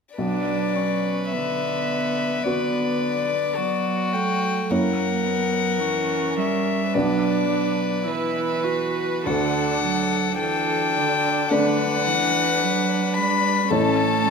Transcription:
0.15 B1 F#3 D4 B4 D5
0.75 C#4
1.32 D3 B3 E5
2.44 D3 B3 F#4 B4 D5
3.56 F#3 B3 F#4
4.13 A3 G5
4.69 F#2 F#3 A#3 E4 A#4 C#5 F#5
5.26 B3
5.78 E3 C#4
6.37 G3 E5
6.93 B1 F#3 B3 D4 B4 D5
7.49 F#3
8.05 E3 E4 B4
8.64 F#4
9.25 D2 D3 D4 A4 F#5
9.84 F#3
10.39 E3 D4 A4 G5
10.97 D3
11.49 D3 A3 D4 B4 D5 F#5
12.07 E3
12.63 F#3
13.14 G3 B5
13.69 A1 A3 C#4 E4 A4 C#5 A5
14.25 G3

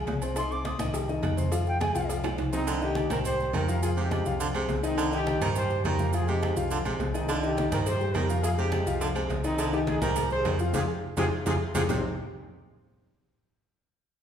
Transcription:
Already playing: G#3 G#4 G#5
0.06 C2, cowbell, high conga, low timbale, maracas
0.22 C4 C5 C6, low agogo, maracas
0.36 D#4 D#5 C6 D#6, cowbell, high conga, low agogo, maracas
0.51 C4 C5 C6 D6, high conga, maracas
0.65 D#6, cowbell, high conga, low timbale, low agogo, maracas
0.79 C2 D#3 D#4 D#5, cowbell, high conga, low conga, low agogo, maracas
0.94 G3 G4 G5, cowbell, high conga, low agogo, maracas
1.09 D#3 D#4 D#5, high conga, maracas
1.22 F2, cowbell, high conga, low timbale, low agogo, maracas
1.37 C4 C5 C6, high conga, maracas
1.52 F3 F4 F5, cowbell, low agogo, maracas
1.67 G5, high conga, maracas
1.80 G#3 G#4 G#5, cowbell, high conga, low timbale, low agogo, maracas
1.95 C2 F3 F4 F5, cowbell, high conga, maracas
2.09 cowbell, high conga, low agogo, maracas
2.24 G#3 G#4 G#5, high bongo, high conga, high timbale, low agogo, maracas
2.38 C2, cowbell, high conga, high timbale, maracas
2.52 C4 D#4 C5 C6, low bongo, low timbale, low agogo, maracas
2.67 D3, high conga, low agogo, maracas
2.81 D#3 D#4 G4 D#5, high conga, maracas
2.95 high conga, low timbale, low agogo, maracas
3.10 C2 D#3 G3 G4 A#4 C5, high conga, low conga, low agogo, maracas
3.25 G4 C5, high conga, low conga, low agogo, maracas
3.39 G3 G4 C5, high conga, maracas
3.53 F2 D#3 G4 A#4, high conga, low timbale, low agogo, maracas
3.68 F3 F4 F5, maracas
3.82 F3 F4 G#4 F5, high conga, low agogo, maracas
3.97 C3 G#3 D#4 G4 G#4 C5, maracas
4.11 high conga, low timbale, low agogo, maracas
4.26 C2 F3 F4 F5, maracas
4.40 D3, high conga, low agogo, maracas
4.54 C3 G#3 G#4 C5, high conga, low agogo, maracas
4.68 C2, high conga, low timbale, maracas
4.83 D#3 C4 D#4 D#5, low agogo, maracas
4.98 D3, high conga, low agogo, maracas
5.12 D#3 D#4 G4 D#5, high conga, maracas
5.27 high conga, low timbale, low agogo, maracas
5.41 G2 D#3 G3 G4 A#4 C5, high conga, low conga, low agogo, maracas
5.56 G4 C5, high conga, low conga, low agogo, maracas
5.70 G3 G4 C5, high conga, maracas
5.84 F2 D#3 G4 A#4, high conga, low timbale, low agogo, maracas
5.99 F3 F4 F5, high conga, maracas
6.13 F3 F4 G#4 F5, high conga, low agogo, maracas
6.28 C3 G#3 D#4 G4 G#4 C5, high conga, maracas
6.42 high conga, low timbale, low agogo, maracas
6.56 C2 F3 F4 F5, high conga, maracas
6.71 D3, high conga, low agogo, maracas
6.85 A#1 C3 G#3 G#4 C5, high conga, low agogo, maracas
6.99 C2, high conga, low timbale, maracas
7.14 D#3 C4 D#4 D#5, low agogo, maracas
7.29 D3 C4 F4, cowbell, high conga, low agogo, maracas
7.43 D#3 D#4 G4 D#5, high conga, maracas
7.57 cowbell, high conga, low timbale, low agogo, maracas
7.71 G2 D#3 G3 G4 A#4 C5, cowbell, high conga, low conga, low agogo, maracas
7.86 G4 C5, cowbell, high conga, low conga, low agogo, maracas
8.01 G3 G4 C5, high conga, maracas
8.14 F2 D#3 G4 A#4, cowbell, high conga, low timbale, low agogo, maracas
8.29 F3 F4 F5, maracas
8.43 F3 F4 G#4 F5, cowbell, high conga, low agogo, maracas
8.58 C3 G#3 D#4 G4 G#4 C5, maracas
8.72 cowbell, high conga, low timbale, low agogo, maracas
8.86 C2 F3 F4 F5, cowbell, high conga, maracas
9.01 D3, cowbell, high conga, low agogo, maracas
9.15 C3 G#3 G#4 C5, high conga, low agogo, maracas
9.30 C2, cowbell, high conga, low timbale, maracas
9.44 D#3 C4 D#4 D#5, low agogo, maracas
9.59 D3, cowbell, high conga, low agogo, maracas
9.72 D#3 D#4 G4 D#5, high conga, maracas
9.87 D#4 G#4, cowbell, high conga, low timbale, low agogo, maracas
10.02 C2 D#3 G3 G4 A#4 C5, cowbell, high conga, low conga, low agogo, maracas
10.16 cowbell, high conga, low conga, low agogo, maracas
10.30 G3 G4 G#4 C5, high conga, maracas
10.45 F2 D#3, cowbell, high conga, low timbale, low agogo, maracas
10.54 G4
10.59 F3 C4 F4 F5, maracas
10.74 F2 C3 F4 G4 G#4, cowbell, high conga, high timbale, maracas
11.17 F2 C3 F4 G4 G#4, cowbell, high conga, high timbale, maracas
11.45 F2 C3 F4 G4 G#4, cowbell, high conga, high timbale, maracas
11.74 F2 C3 F4 G4 G#4, cowbell, high conga, high timbale, maracas
11.88 C2 C3 G3 C4 D#4 G4 C5, low bongo, low conga, low timbale, maracas

